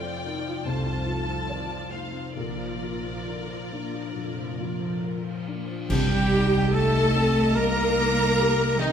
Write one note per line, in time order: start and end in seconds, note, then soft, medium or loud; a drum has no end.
0.00 0.62 F2 medium
0.00 0.63 F2 medium
0.00 1.05 C3 soft
0.00 2.40 C4 soft
0.00 1.07 F4 soft
0.00 1.46 F4 soft
0.00 2.32 F4 medium
0.00 0.50 C5 soft
0.00 0.65 D5 medium
0.00 0.65 G5 medium
0.05 0.25 F3 soft
0.25 0.45 D#3 soft
0.25 1.89 D#4 soft
0.25 0.90 D#4 soft
0.45 0.65 F3 soft
0.64 1.34 C2 soft
0.64 1.34 C2 medium
0.64 2.39 F2 soft
0.64 1.32 C3 soft
0.64 0.85 A3 soft
0.64 1.06 C5 medium
0.64 1.91 A5 medium
0.86 1.06 C4 soft
1.06 2.40 C3 soft
1.06 1.27 A3 soft
1.06 1.75 F4 soft
1.06 1.48 A4 medium
1.27 1.48 F3 soft
1.47 1.69 D#3 soft
1.47 3.26 F4 soft
1.47 2.19 C5 soft
1.47 1.92 D5 medium
1.69 1.91 F3 soft
1.90 2.14 A3 soft
1.90 2.39 D#4 soft
1.90 2.36 D#4 soft
1.90 2.36 C5 soft
1.90 2.36 F5 medium
2.13 2.36 C4 soft
2.35 3.12 A#1 medium
2.35 4.14 A#2 soft
2.35 3.12 A#2 soft
2.35 4.12 A#2 soft
2.35 2.57 D3 soft
2.35 5.65 F4 soft
2.35 5.43 A#4 medium
2.35 5.00 D5 medium
2.59 2.82 F3 soft
2.81 4.58 F3 soft
2.81 3.05 A#3 soft
2.81 3.55 F4 soft
3.04 3.27 F3 soft
3.27 3.49 D3 soft
3.27 5.02 F4 soft
3.27 3.98 A#4 soft
3.49 3.72 F3 soft
3.71 3.94 A#3 soft
3.71 5.45 D4 soft
3.71 4.43 D4 soft
3.93 4.15 F3 soft
4.15 4.89 F1 medium
4.15 4.89 F2 medium
4.15 5.93 A#2 soft
4.15 4.36 D3 soft
4.15 4.86 F3 soft
4.37 4.59 F3 soft
4.59 5.93 F3 soft
4.59 4.81 A#3 soft
4.59 5.30 F4 soft
4.81 5.03 F3 soft
5.03 5.25 D3 soft
5.03 5.93 F4 soft
5.03 5.74 A#4 soft
5.26 5.47 F3 soft
5.47 5.69 A#3 soft
5.47 5.93 D4 soft
5.47 5.91 D4 soft
5.69 5.90 F3 soft
5.88 8.92 C2 medium
5.88 7.52 C2 medium
5.88 7.54 C3 medium
5.88 7.11 C3 medium
5.88 6.69 G3 medium
5.88 6.70 G3 medium
5.88 6.74 G4 medium
5.88 6.69 G4 medium
5.88 6.76 G4 medium
5.88 8.92 D#5 medium
5.88 6.70 G5 medium
5.88 6.76 G5 medium
5.88 concert bass drum medium
5.88 crash medium
6.31 7.95 G3 medium
6.31 6.99 D#4 medium
6.72 7.56 A3 medium
6.72 7.54 A3 medium
6.72 8.37 D#4 medium
6.72 7.40 G4 medium
6.72 7.56 A4 medium
6.72 7.58 A4 medium
6.72 7.56 A5 medium
6.72 7.57 A5 medium
7.14 8.78 C4 medium
7.14 7.81 C4 medium
7.55 8.22 G2 soft
7.55 8.92 C3 medium
7.55 8.79 A#3 loud
7.55 8.80 A#3 medium
7.55 8.80 A#4 medium
7.55 8.77 A#4 loud
7.55 8.82 A#4 medium
7.55 8.81 A#5 medium
7.55 8.79 A#5 loud
7.97 8.92 G3 medium
7.97 8.63 D#4 medium
8.38 8.92 D#4 medium
8.38 8.92 G4 medium
8.79 8.92 D#3 medium
8.79 8.92 C4 medium
8.79 8.92 C4 soft
8.79 8.92 D#4 medium
8.79 8.92 D#5 medium